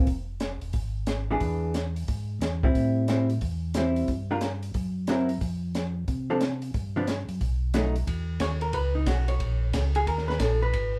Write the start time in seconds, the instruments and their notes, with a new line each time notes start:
0.07 tonewheel organ F1, kick, open hi-hat
0.40 snare, closed hi-hat
0.61 tonewheel organ E1, open hi-hat
0.73 tonewheel organ G#1, kick, open hi-hat
1.07 snare, closed hi-hat
1.31 hollow-body jazz guitar E3 B3 D4 G#4
1.40 tonewheel organ E2, kick, open hi-hat
1.74 snare, closed hi-hat
1.96 open hi-hat
2.08 tonewheel organ G#2, kick, open hi-hat
2.41 tonewheel organ E2, snare, closed hi-hat
2.63 hollow-body jazz guitar G3 C4 E4, kick
2.75 tonewheel organ A2, kick, open hi-hat
3.08 hollow-body jazz guitar G3 C4 E4, snare, closed hi-hat
3.30 open hi-hat
3.41 tonewheel organ E2, kick, open hi-hat
3.74 hollow-body jazz guitar G3 C4 E4, snare, closed hi-hat
3.96 open hi-hat
4.08 tonewheel organ G2, kick, open hi-hat
4.31 hollow-body jazz guitar G3 D4 F4 A#4
4.41 snare, closed hi-hat
4.63 open hi-hat
4.74 tonewheel organ F#2, kick, open hi-hat
5.07 hollow-body jazz guitar F#3 C4 E4 A#4, snare, closed hi-hat
5.29 open hi-hat
5.41 tonewheel organ F2, kick, open hi-hat
5.75 snare, closed hi-hat
6.08 tonewheel organ C3, kick, open hi-hat
6.30 hollow-body jazz guitar F3 C4 D4 A4
6.41 snare, closed hi-hat
6.62 open hi-hat
6.74 tonewheel organ G2, kick, open hi-hat
6.96 hollow-body jazz guitar F3 B3 D4
7.07 snare, closed hi-hat
7.29 tonewheel organ F#2, open hi-hat
7.41 tonewheel organ B1, kick, open hi-hat
7.74 hollow-body jazz guitar F#3 A3 D#4, snare, closed hi-hat
7.96 open hi-hat
8.07 tonewheel organ E2, kick, ride
8.40 tonewheel organ D#2, hollow-body jazz guitar C#5, kick, snare, hi-hat pedal, ride
8.61 hollow-body jazz guitar A#4, ride
8.73 tonewheel organ C#2, hollow-body jazz guitar B4, kick, ride
8.95 hollow-body jazz guitar D#4
9.06 tonewheel organ B1, hollow-body jazz guitar F#4, kick, snare, hi-hat pedal, ride
9.28 hollow-body jazz guitar C#5, ride
9.40 tonewheel organ A#1, kick, ride
9.73 tonewheel organ C#2, kick, snare, hi-hat pedal, ride
9.95 hollow-body jazz guitar G#4, ride
10.07 tonewheel organ D#2, hollow-body jazz guitar A#4, kick, ride
10.18 snare
10.28 hollow-body jazz guitar B4, snare
10.39 tonewheel organ A#1, hollow-body jazz guitar A4, kick, snare, hi-hat pedal, ride
10.62 hollow-body jazz guitar B4
10.73 tonewheel organ G#1, kick, ride